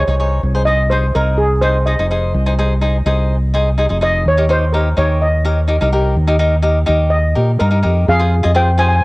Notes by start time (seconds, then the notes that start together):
Already playing: C#5
0.08 C2 D#4 G#4 C#5
0.20 D#4 G#4 C#5
0.43 C2
0.55 D#4 G#4 C5
0.65 D#4 G#4 C5 D#5
0.90 D#4 G#4 C5
1.15 C2 D#4 G#4 A#4
1.38 G#4
1.61 D#4 G#4 C5
1.86 D#4 G#4 C5 D#5
1.99 F1 D#4 G#4 C5
2.11 D#4 G#4 C5
2.34 C2
2.46 D#4 G#4 C5
2.59 D#4 G#4 C5
2.81 D#4 G#4 C5
3.05 C2 D#4 G#4 C5
3.54 D#4 G#4 C5
3.78 D#4 G#4 C5
3.89 F1 D#4 G#4 C5
4.01 D#4 G#4 C5 D#5
4.26 D#2 C#5
4.37 D#4 G4 A#4
4.49 D#4 G4 A#4 C5
4.73 D#4 G4 A#4
4.97 D#2 D#4 G4 A#4 C#5
5.22 D#5
5.45 D#4 G4 A#4
5.68 D#4 G4 A#4
5.81 C2 D#4 G4 A#4
5.93 D#4 G4 A#4
6.16 D#2
6.28 D#4 G4 A#4
6.39 D#4 G4 A#4
6.62 D#4 G4 A#4
6.86 D#2 D#4 G4 A#4
7.10 D#5
7.35 A#2 D#4 G4 A#4
7.59 G2 D#4 G4 A#4
7.71 D#4 G4 A#4
7.83 F2 D#4 G4 A#4
8.08 F2 G#4 F5
8.20 F4 G#4 C5
8.43 F2 F4 G#4 D#5
8.54 F4 G#4 C5 G5
8.78 F4 G#4 C5 G#5
8.88 G#5
8.96 G#5